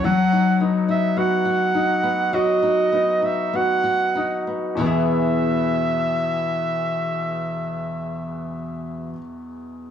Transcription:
<<
  \new Staff \with { instrumentName = "Flugelhorn" } { \time 4/4 \key e \major \tempo 4 = 47 fis''8 r16 e''16 fis''4 dis''8. e''16 fis''8. r16 | e''1 | }
  \new Staff \with { instrumentName = "Grand piano" } { \time 4/4 \key e \major fis8 dis'8 fis'8 dis'8 fis'8 dis'8 fis'8 dis'8 | <e, b, e b gis' e''>1 | }
  \new Staff \with { instrumentName = "Nylon-string guitar" } { \time 4/4 \key e \major fis16 dis'16 b16 dis'16 b16 fis'16 dis'16 b16 fis16 dis'16 b16 dis'16 b16 fis'16 dis'16 b16 | <e, b, e b gis'>1 | }
>>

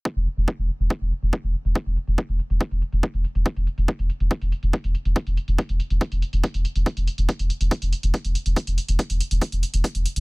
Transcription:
<<
  \new Staff \with { instrumentName = "Sub bass" } { \clef bass \time 4/4 \key c \lydian \tempo 4 = 141 r16 e,,16 r16 e,,16 r16 e,,16 r16 e,,16 r16 e,,16 r16 e,,16 r16 e,,16 r16 e,,16 | r16 e,,16 r16 e,,16 r16 e,,16 r16 e,,16 r16 e,,16 r16 e,,16 r16 e,,16 r16 e,,16 | r16 e,,16 r16 e,,16 r16 e,,16 r16 e,,16 r16 e,,16 r16 e,,16 r16 e,,16 r16 e,,16 | r16 e,,16 r16 e,,16 r16 e,,16 r16 e,,16 r16 e,,16 r16 e,,16 r16 e,,16 r16 e,,16 |
r16 e,,16 r16 e,,16 r16 e,,16 r16 e,,16 r16 e,,16 r16 e,,16 r16 e,,16 r16 e,,16 | r16 e,,16 r16 e,,16 r16 e,,16 r16 e,,16 r16 e,,16 r16 e,,16 r16 e,,16 r16 e,,16 | }
  \new DrumStaff \with { instrumentName = "Drums" } \drummode { \time 4/4 bd8 hh16 hh16 bd8 hh16 hh16 bd8 hh16 hh16 bd8 hh16 hh16 | bd16 hh16 hh16 hh16 bd16 hh16 hh16 hh16 bd16 hh16 hh16 hh16 bd16 hh16 hh16 hh16 | <hh bd>16 hh16 hh16 hh16 <hh bd>16 hh16 hh16 hh16 <hh bd>16 hh16 hh16 hh16 <hh bd>16 hh16 hh16 hh16 | <hh bd>16 hh16 hh16 hh16 <hh bd>16 hh16 hh16 hh16 <hh bd>16 hh16 hh16 hh16 <hh bd>16 hh16 hh16 hh16 |
<hh bd>16 hh16 hh16 hh16 <hh bd>16 hh16 hh16 hh16 <hh bd>16 hh16 hh16 hh16 <hh bd>16 hh16 hh16 hh16 | <hh bd>16 hh16 hh16 hh16 <hh bd>16 hh16 hh16 hh16 <hh bd>16 hh16 hh16 hh16 <hh bd>16 hh16 hh16 hh16 | }
>>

